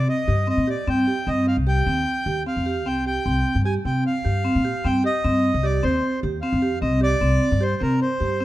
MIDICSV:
0, 0, Header, 1, 4, 480
1, 0, Start_track
1, 0, Key_signature, -3, "minor"
1, 0, Tempo, 396301
1, 1061, Time_signature, 5, 2, 24, 8
1, 10232, End_track
2, 0, Start_track
2, 0, Title_t, "Accordion"
2, 0, Program_c, 0, 21
2, 108, Note_on_c, 0, 75, 71
2, 579, Note_off_c, 0, 75, 0
2, 597, Note_on_c, 0, 75, 67
2, 836, Note_off_c, 0, 75, 0
2, 843, Note_on_c, 0, 74, 66
2, 1079, Note_off_c, 0, 74, 0
2, 1082, Note_on_c, 0, 79, 68
2, 1550, Note_on_c, 0, 75, 70
2, 1566, Note_off_c, 0, 79, 0
2, 1770, Note_off_c, 0, 75, 0
2, 1789, Note_on_c, 0, 77, 64
2, 1896, Note_off_c, 0, 77, 0
2, 2037, Note_on_c, 0, 79, 77
2, 2943, Note_off_c, 0, 79, 0
2, 2995, Note_on_c, 0, 77, 63
2, 3468, Note_on_c, 0, 79, 67
2, 3485, Note_off_c, 0, 77, 0
2, 3690, Note_off_c, 0, 79, 0
2, 3715, Note_on_c, 0, 79, 74
2, 4382, Note_off_c, 0, 79, 0
2, 4424, Note_on_c, 0, 80, 69
2, 4533, Note_off_c, 0, 80, 0
2, 4672, Note_on_c, 0, 79, 62
2, 4892, Note_off_c, 0, 79, 0
2, 4923, Note_on_c, 0, 77, 69
2, 5879, Note_on_c, 0, 79, 70
2, 5902, Note_off_c, 0, 77, 0
2, 6095, Note_off_c, 0, 79, 0
2, 6123, Note_on_c, 0, 75, 70
2, 6829, Note_on_c, 0, 74, 65
2, 6854, Note_off_c, 0, 75, 0
2, 7064, Note_on_c, 0, 72, 63
2, 7073, Note_off_c, 0, 74, 0
2, 7510, Note_off_c, 0, 72, 0
2, 7771, Note_on_c, 0, 77, 62
2, 8222, Note_off_c, 0, 77, 0
2, 8257, Note_on_c, 0, 75, 64
2, 8482, Note_off_c, 0, 75, 0
2, 8514, Note_on_c, 0, 74, 82
2, 9229, Note_on_c, 0, 72, 71
2, 9248, Note_off_c, 0, 74, 0
2, 9471, Note_off_c, 0, 72, 0
2, 9475, Note_on_c, 0, 70, 61
2, 9690, Note_off_c, 0, 70, 0
2, 9708, Note_on_c, 0, 72, 58
2, 10232, Note_off_c, 0, 72, 0
2, 10232, End_track
3, 0, Start_track
3, 0, Title_t, "Vibraphone"
3, 0, Program_c, 1, 11
3, 0, Note_on_c, 1, 60, 52
3, 167, Note_off_c, 1, 60, 0
3, 336, Note_on_c, 1, 67, 54
3, 491, Note_off_c, 1, 67, 0
3, 573, Note_on_c, 1, 60, 64
3, 729, Note_off_c, 1, 60, 0
3, 816, Note_on_c, 1, 67, 60
3, 971, Note_off_c, 1, 67, 0
3, 1060, Note_on_c, 1, 60, 79
3, 1214, Note_off_c, 1, 60, 0
3, 1302, Note_on_c, 1, 67, 58
3, 1455, Note_off_c, 1, 67, 0
3, 1539, Note_on_c, 1, 60, 64
3, 1847, Note_off_c, 1, 60, 0
3, 2020, Note_on_c, 1, 67, 67
3, 2174, Note_off_c, 1, 67, 0
3, 2261, Note_on_c, 1, 60, 48
3, 2569, Note_off_c, 1, 60, 0
3, 2744, Note_on_c, 1, 67, 56
3, 2898, Note_off_c, 1, 67, 0
3, 2983, Note_on_c, 1, 60, 57
3, 3137, Note_off_c, 1, 60, 0
3, 3222, Note_on_c, 1, 67, 64
3, 3376, Note_off_c, 1, 67, 0
3, 3465, Note_on_c, 1, 60, 69
3, 3618, Note_off_c, 1, 60, 0
3, 3711, Note_on_c, 1, 67, 55
3, 3862, Note_off_c, 1, 67, 0
3, 3942, Note_on_c, 1, 60, 64
3, 4250, Note_off_c, 1, 60, 0
3, 4428, Note_on_c, 1, 67, 69
3, 4581, Note_off_c, 1, 67, 0
3, 4671, Note_on_c, 1, 60, 54
3, 4975, Note_off_c, 1, 60, 0
3, 5142, Note_on_c, 1, 67, 57
3, 5297, Note_off_c, 1, 67, 0
3, 5383, Note_on_c, 1, 60, 69
3, 5537, Note_off_c, 1, 60, 0
3, 5628, Note_on_c, 1, 67, 65
3, 5781, Note_off_c, 1, 67, 0
3, 5867, Note_on_c, 1, 60, 68
3, 6020, Note_off_c, 1, 60, 0
3, 6103, Note_on_c, 1, 67, 64
3, 6257, Note_off_c, 1, 67, 0
3, 6350, Note_on_c, 1, 60, 69
3, 6654, Note_off_c, 1, 60, 0
3, 6822, Note_on_c, 1, 67, 66
3, 6976, Note_off_c, 1, 67, 0
3, 7059, Note_on_c, 1, 60, 65
3, 7366, Note_off_c, 1, 60, 0
3, 7549, Note_on_c, 1, 67, 59
3, 7700, Note_off_c, 1, 67, 0
3, 7789, Note_on_c, 1, 60, 72
3, 7940, Note_off_c, 1, 60, 0
3, 8020, Note_on_c, 1, 67, 65
3, 8174, Note_off_c, 1, 67, 0
3, 8261, Note_on_c, 1, 60, 76
3, 8414, Note_off_c, 1, 60, 0
3, 8492, Note_on_c, 1, 67, 63
3, 8647, Note_off_c, 1, 67, 0
3, 8736, Note_on_c, 1, 60, 64
3, 9043, Note_off_c, 1, 60, 0
3, 9211, Note_on_c, 1, 67, 71
3, 9366, Note_off_c, 1, 67, 0
3, 9453, Note_on_c, 1, 60, 60
3, 9760, Note_off_c, 1, 60, 0
3, 9935, Note_on_c, 1, 67, 60
3, 10089, Note_off_c, 1, 67, 0
3, 10178, Note_on_c, 1, 60, 64
3, 10232, Note_off_c, 1, 60, 0
3, 10232, End_track
4, 0, Start_track
4, 0, Title_t, "Upright bass"
4, 0, Program_c, 2, 32
4, 336, Note_on_c, 2, 43, 65
4, 634, Note_off_c, 2, 43, 0
4, 694, Note_on_c, 2, 46, 59
4, 894, Note_off_c, 2, 46, 0
4, 1057, Note_on_c, 2, 43, 62
4, 1256, Note_off_c, 2, 43, 0
4, 1536, Note_on_c, 2, 43, 73
4, 1834, Note_off_c, 2, 43, 0
4, 1900, Note_on_c, 2, 36, 65
4, 2197, Note_off_c, 2, 36, 0
4, 2258, Note_on_c, 2, 39, 70
4, 2457, Note_off_c, 2, 39, 0
4, 2737, Note_on_c, 2, 39, 61
4, 2937, Note_off_c, 2, 39, 0
4, 3105, Note_on_c, 2, 41, 60
4, 3458, Note_off_c, 2, 41, 0
4, 3458, Note_on_c, 2, 36, 65
4, 3855, Note_off_c, 2, 36, 0
4, 3944, Note_on_c, 2, 36, 64
4, 4141, Note_off_c, 2, 36, 0
4, 4300, Note_on_c, 2, 43, 70
4, 4598, Note_off_c, 2, 43, 0
4, 4661, Note_on_c, 2, 48, 61
4, 4859, Note_off_c, 2, 48, 0
4, 5151, Note_on_c, 2, 43, 58
4, 5444, Note_off_c, 2, 43, 0
4, 5516, Note_on_c, 2, 46, 65
4, 5708, Note_off_c, 2, 46, 0
4, 5871, Note_on_c, 2, 43, 73
4, 6065, Note_off_c, 2, 43, 0
4, 6354, Note_on_c, 2, 43, 75
4, 6645, Note_off_c, 2, 43, 0
4, 6711, Note_on_c, 2, 36, 71
4, 7003, Note_off_c, 2, 36, 0
4, 7070, Note_on_c, 2, 39, 76
4, 7264, Note_off_c, 2, 39, 0
4, 7546, Note_on_c, 2, 39, 72
4, 7742, Note_off_c, 2, 39, 0
4, 7904, Note_on_c, 2, 41, 69
4, 8257, Note_on_c, 2, 36, 63
4, 8275, Note_off_c, 2, 41, 0
4, 8652, Note_off_c, 2, 36, 0
4, 8731, Note_on_c, 2, 36, 67
4, 8932, Note_off_c, 2, 36, 0
4, 9102, Note_on_c, 2, 43, 78
4, 9396, Note_off_c, 2, 43, 0
4, 9463, Note_on_c, 2, 48, 70
4, 9658, Note_off_c, 2, 48, 0
4, 9942, Note_on_c, 2, 43, 61
4, 10232, Note_off_c, 2, 43, 0
4, 10232, End_track
0, 0, End_of_file